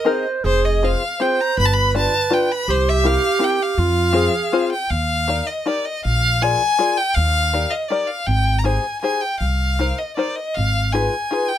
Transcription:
0.00 0.26 D#5 loud
0.05 0.25 C4 medium
0.05 0.25 D#4 medium
0.05 0.25 G#4 medium
0.05 0.25 A#4 medium
0.05 0.46 C5 medium
0.44 0.94 F1 medium
0.44 0.94 G#4 loud
0.44 0.67 C5 loud
0.65 0.86 D#5 medium
0.83 1.02 C4 medium
0.83 1.02 F4 soft
0.83 1.02 G#4 soft
0.83 1.02 C5 medium
0.83 1.23 F5 medium
1.20 1.39 C4 medium
1.20 1.39 F4 medium
1.20 1.39 G#4 medium
1.20 1.60 C5 loud
1.20 1.40 C5 medium
1.20 1.42 G5 medium
1.40 1.58 A#5 medium
1.58 2.05 G1 medium
1.58 2.68 B4 loud
1.58 1.67 B5 loud
1.65 1.75 A5 medium
1.73 1.95 B5 loud
1.94 2.13 D4 soft
1.94 2.13 F4 soft
1.94 2.13 G4 medium
1.94 2.13 B4 medium
1.94 2.35 A5 loud
2.30 2.49 D4 medium
2.30 2.49 F4 medium
2.30 2.49 G4 medium
2.30 2.50 B4 medium
2.30 2.53 G5 medium
2.52 2.72 B5 loud
2.68 3.16 C2 medium
2.68 3.80 G4 loud
2.68 2.91 C5 loud
2.89 3.08 E5 loud
3.04 3.22 C4 medium
3.04 3.23 E4 medium
3.04 3.23 G4 medium
3.04 3.23 A#4 medium
3.04 3.46 F5 loud
3.39 3.59 C4 medium
3.39 3.59 E4 medium
3.39 3.59 G4 medium
3.39 3.59 A#4 medium
3.44 3.65 G5 medium
3.63 4.71 F5 loud
3.78 4.27 F2 medium
3.78 4.18 F4 medium
4.13 4.33 C4 medium
4.13 4.33 F4 medium
4.13 4.33 G#4 medium
4.13 4.73 G#4 medium
4.13 4.33 C5 medium
4.52 4.72 C4 medium
4.52 4.72 F4 medium
4.52 4.72 G#4 medium
4.52 4.73 C5 medium
4.72 4.92 G5 loud
4.90 5.40 D#2 medium
4.90 5.49 F5 loud
5.28 5.48 D#4 medium
5.28 5.48 G4 soft
5.28 5.48 A#4 soft
5.28 5.48 D5 medium
5.47 5.68 D#5 medium
5.66 5.85 D#4 medium
5.66 5.86 G4 medium
5.66 5.86 A#4 medium
5.66 5.87 D5 medium
5.66 5.86 D5 medium
5.85 6.04 D#5 medium
6.05 6.53 A#1 medium
6.05 6.43 F5 loud
6.42 6.61 F4 soft
6.42 6.61 G#4 soft
6.42 6.61 A#4 medium
6.42 6.62 D5 medium
6.42 6.99 G#5 loud
6.79 6.97 F4 medium
6.79 6.98 G#4 medium
6.79 6.98 A#4 medium
6.79 6.98 D5 medium
6.97 7.16 G5 loud
7.15 7.64 D#2 medium
7.15 7.72 F5 loud
7.53 7.72 D#4 medium
7.53 7.72 G4 medium
7.53 7.72 A#4 soft
7.53 7.72 D5 medium
7.70 7.90 D#5 medium
7.88 8.09 D#4 medium
7.88 8.09 G4 medium
7.88 8.09 A#4 medium
7.88 8.09 D5 medium
8.07 8.28 F5 medium
8.26 8.77 G#1 medium
8.26 8.60 G5 loud
8.59 8.66 A#5 medium
8.64 8.84 D#4 medium
8.64 8.84 G4 soft
8.64 8.84 G#4 soft
8.64 8.84 C5 medium
8.64 9.01 G#5 medium
9.02 9.22 D#4 medium
9.02 9.23 G4 medium
9.02 9.23 G#4 soft
9.02 9.23 C5 medium
9.02 9.23 G#5 medium
9.21 9.39 G5 medium
9.40 9.91 C2 medium
9.40 10.00 F5 medium
9.79 9.99 D#4 medium
9.79 9.99 G4 soft
9.79 9.99 A#4 soft
9.79 9.99 C5 medium
9.98 10.16 D#5 medium
10.17 10.37 D#4 medium
10.17 10.37 G4 medium
10.17 10.37 A#4 soft
10.17 10.38 C5 medium
10.17 10.37 D5 medium
10.36 10.56 D#5 medium
10.54 11.06 G#1 medium
10.54 10.94 F5 loud
10.92 11.13 D#4 medium
10.92 11.14 F4 medium
10.92 11.14 G#4 medium
10.92 11.14 B4 medium
10.92 11.50 G#5 medium
11.31 11.51 D#4 medium
11.31 11.51 F4 medium
11.31 11.51 G#4 medium
11.31 11.52 B4 medium
11.49 11.58 G5 medium

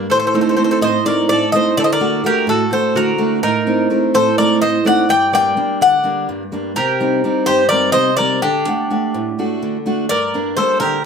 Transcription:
0.10 0.56 A2 medium
0.10 0.17 A4 medium
0.10 0.18 C5 medium
0.19 0.26 A4 soft
0.19 0.26 C5 medium
0.27 0.33 A4 medium
0.27 0.33 C5 medium
0.34 0.56 A3 soft
0.34 0.57 C4 soft
0.34 0.56 D#4 soft
0.34 0.41 A4 soft
0.34 0.40 C5 soft
0.41 0.48 A4 soft
0.41 0.48 C5 medium
0.49 0.57 A4 soft
0.49 0.55 C5 soft
0.57 0.96 A3 soft
0.57 0.96 C4 soft
0.57 0.96 D#4 medium
0.57 0.64 A4 soft
0.57 0.63 C5 medium
0.64 0.71 A4 soft
0.64 0.70 C5 medium
0.71 0.79 A4 medium
0.71 0.78 C5 medium
0.81 1.28 A2 medium
0.81 1.05 C5 medium
0.81 1.04 D#5 medium
1.05 1.43 A3 soft
1.05 1.44 C4 soft
1.05 1.44 D#4 medium
1.05 1.29 A#4 medium
1.05 1.28 D5 medium
1.29 1.76 A2 medium
1.29 1.53 A4 medium
1.29 1.52 D5 medium
1.52 1.72 A3 soft
1.52 1.73 C4 soft
1.52 1.73 D#4 medium
1.52 1.77 C5 medium
1.52 1.77 D#5 medium
1.77 2.24 D3 medium
1.77 1.84 A4 medium
1.77 1.84 D5 medium
1.84 1.91 C5 medium
1.84 1.91 D#5 medium
1.93 2.23 A#4 medium
1.93 2.23 D5 medium
2.00 2.23 A3 soft
2.00 2.23 D4 soft
2.00 2.23 F#4 medium
2.24 2.62 A3 soft
2.24 2.62 D4 soft
2.24 2.63 F#4 medium
2.24 2.48 G4 medium
2.24 2.48 A#4 medium
2.47 2.94 A2 medium
2.47 2.71 F#4 medium
2.47 2.71 A4 medium
2.71 3.09 A3 soft
2.71 3.10 D4 soft
2.71 3.10 F#4 soft
2.71 2.95 A4 medium
2.71 2.97 C5 medium
2.95 3.42 D3 medium
2.95 3.40 F#4 medium
2.95 3.41 A#4 medium
3.18 3.38 A3 medium
3.18 3.38 D4 soft
3.18 3.38 F#4 medium
3.43 3.89 A2 medium
3.43 4.11 D#4 medium
3.43 4.11 A#4 medium
3.67 3.89 C4 soft
3.67 3.90 D#4 medium
3.90 4.29 A3 soft
3.90 4.28 C4 soft
3.90 4.29 D#4 soft
4.14 4.60 A2 medium
4.14 4.37 A4 medium
4.14 4.38 C5 medium
4.38 4.76 A3 soft
4.38 4.77 C4 soft
4.38 4.77 D#4 medium
4.38 4.60 A#4 medium
4.38 4.61 D5 medium
4.62 5.08 A2 medium
4.62 4.84 C5 medium
4.62 4.84 D#5 medium
4.85 5.04 A3 medium
4.85 5.05 C4 soft
4.85 5.05 D#4 medium
4.85 5.08 D5 medium
4.85 5.09 F#5 medium
5.09 5.55 G2 medium
5.09 5.32 D5 medium
5.09 5.32 G5 loud
5.33 5.55 G3 medium
5.33 5.56 A#3 soft
5.33 5.56 D4 medium
5.33 5.78 D5 medium
5.33 5.82 G5 loud
5.57 5.95 G3 soft
5.57 5.95 A#3 soft
5.57 5.95 D4 medium
5.81 6.27 D3 medium
5.81 6.26 D5 medium
5.81 6.26 F#5 medium
6.03 6.42 G3 soft
6.03 6.42 A#3 soft
6.03 6.42 D4 medium
6.29 6.75 G2 medium
6.52 6.71 G3 soft
6.52 6.71 A#3 soft
6.52 6.72 D4 medium
6.76 7.22 C3 medium
6.76 7.44 G4 medium
6.76 7.49 A#4 medium
7.00 7.23 G3 medium
7.00 7.23 C4 soft
7.00 7.23 D#4 medium
7.24 7.62 G3 soft
7.24 7.62 C4 soft
7.24 7.62 D#4 soft
7.46 7.94 G2 medium
7.46 7.69 G4 medium
7.46 7.68 C5 loud
7.69 8.09 G3 medium
7.69 8.10 C4 soft
7.69 8.10 D#4 medium
7.69 7.93 A#4 medium
7.69 7.92 D5 loud
7.92 8.41 C3 medium
7.92 8.16 C5 medium
7.92 8.16 D#5 loud
8.17 8.38 G3 medium
8.17 8.38 C4 soft
8.17 8.39 D#4 medium
8.17 8.40 A#4 medium
8.17 8.40 D5 medium
8.42 8.68 D3 medium
8.42 9.57 D4 medium
8.42 9.57 G4 medium
8.67 8.89 A3 soft
8.67 8.90 D4 soft
8.67 8.90 F#5 medium
8.90 9.28 A3 soft
8.90 9.28 D4 soft
8.90 9.28 F#5 medium
9.14 9.60 A2 medium
9.39 9.76 A3 soft
9.39 9.76 D4 soft
9.39 9.77 F#4 medium
9.62 10.08 D3 medium
9.86 10.04 A3 soft
9.86 10.05 D4 soft
9.86 10.05 F#4 medium
10.09 10.55 G2 medium
10.09 10.54 A#4 medium
10.09 10.56 D5 loud
10.34 10.56 G3 soft
10.34 10.56 A#3 soft
10.34 10.57 D4 medium
10.57 10.95 G3 soft
10.57 10.95 A#3 soft
10.57 10.95 D4 soft
10.57 10.79 A4 medium
10.57 10.79 C5 medium
10.80 11.05 D3 medium
10.80 11.03 G4 medium
10.80 11.02 A#4 medium

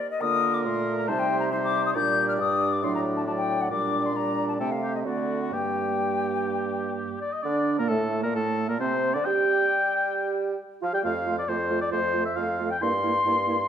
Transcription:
0.00 0.10 D5 medium
0.11 0.23 D#5 medium
0.21 0.67 D3 medium
0.21 0.67 A#3 medium
0.21 1.10 F4 soft
0.21 1.09 A#4 soft
0.21 0.55 D#6 medium
0.54 0.64 D6 medium
0.65 1.11 A#2 medium
0.65 1.12 A3 medium
0.65 0.97 C6 medium
0.98 1.09 A#5 medium
1.08 1.95 C3 medium
1.08 1.52 G3 soft
1.08 1.51 D#4 medium
1.08 1.51 C5 medium
1.08 1.21 A5 medium
1.19 1.39 G5 medium
1.40 1.45 A#5 medium
1.51 1.95 G3 medium
1.51 1.97 D#4 soft
1.51 1.97 C5 soft
1.51 1.57 C6 medium
1.64 1.84 D6 medium
1.86 1.91 D#6 medium
1.95 2.40 A#2 medium
1.95 2.86 G3 medium
1.95 2.82 D4 soft
1.95 2.83 D5 soft
1.95 2.28 G6 medium
2.28 2.33 F6 medium
2.39 2.85 G2 medium
2.39 2.74 D#6 medium
2.73 2.85 D6 medium
2.83 3.70 A2 soft
2.83 3.27 F#3 soft
2.83 3.25 D4 soft
2.83 3.26 D5 soft
2.83 2.94 C6 medium
2.95 3.01 A#5 medium
3.17 3.21 A5 medium
3.26 3.71 F#3 soft
3.26 3.70 D4 soft
3.26 3.70 D5 soft
3.26 3.32 A5 medium
3.37 3.63 G5 medium
3.61 3.70 F#5 medium
3.70 4.56 A#2 soft
3.70 4.13 G3 soft
3.70 4.12 D4 soft
3.70 4.12 D5 soft
3.70 4.07 D6 medium
4.06 4.18 C6 medium
4.15 4.62 G3 soft
4.15 4.59 D4 soft
4.15 4.59 D5 soft
4.15 4.48 A#5 medium
4.48 4.54 A5 soft
4.59 5.07 C3 soft
4.59 5.06 A3 soft
4.59 5.05 C4 soft
4.59 4.70 A4 soft
4.59 4.73 G5 medium
4.71 4.94 F5 medium
4.83 4.93 G4 soft
4.95 5.00 D#5 soft
5.05 5.54 D3 soft
5.05 5.52 A3 soft
5.05 5.52 C4 soft
5.05 5.54 F#4 soft
5.05 5.41 D5 soft
5.42 5.52 F#5 soft
5.52 7.21 G2 soft
5.52 7.17 G3 soft
5.52 7.17 A#3 soft
5.52 7.20 G4 soft
5.52 6.94 G5 medium
7.21 7.32 D5 soft
7.21 7.34 D5 soft
7.33 7.45 D#5 soft
7.33 7.43 D#5 soft
7.43 7.77 D3 medium
7.43 7.76 D4 medium
7.43 7.81 D4 medium
7.43 7.78 D5 medium
7.43 7.77 D5 medium
7.78 7.90 A#2 soft
7.78 7.91 A#3 soft
7.78 7.90 A#4 soft
7.89 8.24 A2 soft
7.89 8.25 A3 soft
7.89 8.27 A3 soft
7.89 8.23 A4 medium
7.89 8.25 A4 soft
8.23 8.37 A#2 soft
8.23 8.36 A#3 soft
8.23 8.37 A#3 soft
8.23 8.34 A#4 medium
8.23 8.37 A#4 soft
8.35 8.69 A2 medium
8.35 8.70 A3 soft
8.35 8.68 A4 medium
8.35 8.71 A4 medium
8.68 8.82 A#2 soft
8.68 8.79 A#3 soft
8.68 8.82 A#3 soft
8.68 8.79 A#4 soft
8.68 8.82 A#4 soft
8.79 9.15 C3 medium
8.79 9.15 C4 medium
8.79 9.16 C4 medium
8.79 9.15 C5 medium
9.13 9.20 D3 medium
9.13 9.25 D4 soft
9.13 9.26 D4 medium
9.13 9.28 D5 medium
9.13 9.27 D5 medium
9.25 10.58 G3 medium
9.25 10.57 G4 medium
9.25 10.58 G4 medium
9.25 10.60 G5 medium
10.82 10.93 F3 soft
10.82 10.87 F4 medium
10.82 10.92 F4 soft
10.82 10.87 F5 medium
10.82 10.93 F5 medium
10.93 11.04 G3 medium
10.93 10.98 G4 medium
10.93 11.03 G4 medium
10.93 11.04 G5 medium
10.93 10.99 G5 medium
11.03 11.44 F2 soft
11.03 11.13 A3 soft
11.03 11.14 F4 soft
11.03 11.37 F5 medium
11.26 11.36 A3 soft
11.26 11.36 F4 soft
11.38 11.43 D5 medium
11.38 11.50 D5 medium
11.48 11.88 F2 medium
11.48 11.58 A3 soft
11.48 11.59 F4 soft
11.48 11.80 C5 medium
11.48 11.81 C5 medium
11.70 11.80 A3 soft
11.70 11.80 F4 soft
11.81 11.91 D5 medium
11.81 11.87 D5 soft
11.91 12.31 F2 medium
11.91 12.03 A3 soft
11.91 12.01 F4 soft
11.91 12.24 C5 medium
11.91 12.25 C5 medium
12.13 12.25 A3 soft
12.13 12.23 F4 soft
12.25 12.37 E5 medium
12.25 12.31 E5 medium
12.36 12.77 F2 soft
12.36 12.48 A3 soft
12.36 12.46 F4 medium
12.36 12.70 F5 medium
12.36 12.72 F5 soft
12.58 12.70 A3 soft
12.58 12.69 F4 soft
12.70 12.80 G5 medium
12.70 12.84 G5 medium
12.80 13.21 G2 medium
12.80 12.93 A#3 medium
12.80 12.91 E4 soft
12.80 13.68 C6 medium
13.04 13.15 A#3 soft
13.04 13.13 E4 medium
13.25 13.64 G2 medium
13.25 13.36 A#3 soft
13.25 13.35 E4 medium
13.47 13.57 A#3 soft
13.47 13.57 E4 soft

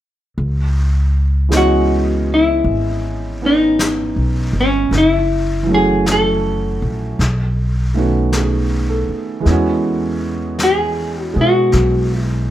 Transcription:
0.38 2.61 C#2 medium
0.38 brush sweep soft
1.49 4.90 E3 soft
1.49 4.91 G#3 soft
1.49 3.40 B3 soft
1.49 3.42 C#4 soft
1.49 brush sweep soft
1.49 snare soft
1.49 hi-hat pedal soft
1.54 2.33 F#4 medium
1.54 4.93 D#5 soft
2.34 3.46 E4 medium
2.64 4.12 G#1 medium
2.64 brush sweep soft
3.42 4.92 B3 soft
3.42 4.92 C#4 soft
3.42 4.93 D#4 soft
3.46 4.60 D#4 medium
3.79 brush sweep soft
3.79 snare soft
3.79 hi-hat pedal medium
4.16 4.51 B1 soft
4.53 4.89 G1 medium
4.61 4.95 C#4 medium
4.91 6.78 F#1 medium
4.91 brush sweep soft
4.91 snare soft
4.98 5.74 E4 medium
5.63 7.16 E3 soft
5.63 7.17 F#3 soft
5.69 7.19 A3 soft
5.69 7.20 C#4 soft
5.74 7.21 F#4 soft
5.74 6.06 G#4 medium
6.06 brush sweep soft
6.06 snare soft
6.06 hi-hat pedal soft
6.12 8.31 A4 medium
6.82 7.16 A#1 medium
7.19 9.05 B1 medium
7.19 brush sweep soft
7.19 snare soft
7.94 9.45 D#3 soft
7.94 9.45 A3 soft
7.94 9.44 B3 soft
7.94 9.46 C#4 soft
7.99 9.47 F#4 soft
8.32 9.24 G#4 soft
8.32 brush sweep soft
8.32 snare soft
8.32 hi-hat pedal soft
8.89 9.70 A4 soft
9.09 muted upright bass stroke soft
9.40 12.51 E3 soft
9.40 11.32 G#3 soft
9.45 11.32 E2 medium
9.45 11.34 B3 soft
9.45 12.51 C#4 soft
9.45 brush sweep soft
9.45 snare soft
9.52 12.51 F#4 medium
10.59 brush sweep soft
10.59 snare soft
10.59 hi-hat pedal soft
10.63 11.23 G#4 medium
11.23 11.41 F#4 medium
11.34 11.70 B2 medium
11.34 12.51 G#3 soft
11.34 12.51 B3 soft
11.34 12.51 G#4 soft
11.41 12.20 F#4 medium
11.72 12.51 B1 medium
11.72 brush sweep soft
11.72 snare soft
12.20 12.51 E4 medium

